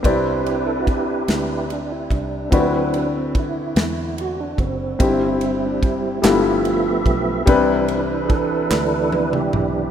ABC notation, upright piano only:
X:1
M:6/8
L:1/8
Q:3/8=48
K:C
V:1 name="Upright piano"
[CEGBd]6 | [CE^FBd]6 | [C_E=EG]3 [G,B,EFA]3 | [G,CDEB]6 |]
V:2 name="Upright piano" clef=bass
C,3 z3 | D,3 z3 | G,,3 G,,3 | C,3 z3 |]